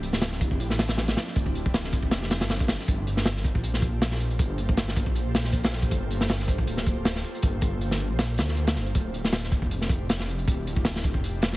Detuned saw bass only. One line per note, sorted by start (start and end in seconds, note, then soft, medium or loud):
0.00 0.52 D1 loud
0.51 0.59 F1 medium
0.60 1.16 A1 medium
1.36 2.04 D1 loud
2.03 2.42 F1 medium
2.41 2.77 G1 loud
2.88 3.57 G1 loud
3.55 4.38 A#1 medium
4.39 5.08 G1 loud
5.06 5.90 A#1 medium
5.91 6.60 G1 loud
6.58 6.66 A#1 medium
6.67 7.23 D1 medium
7.43 8.12 G1 loud
8.11 8.40 A#1 medium
8.38 8.57 D2 loud
8.57 8.78 D2 loud
8.76 8.94 G1 loud
8.95 9.64 D1 loud
9.62 10.46 F1 medium
10.47 11.16 D1 loud
11.14 11.57 F1 medium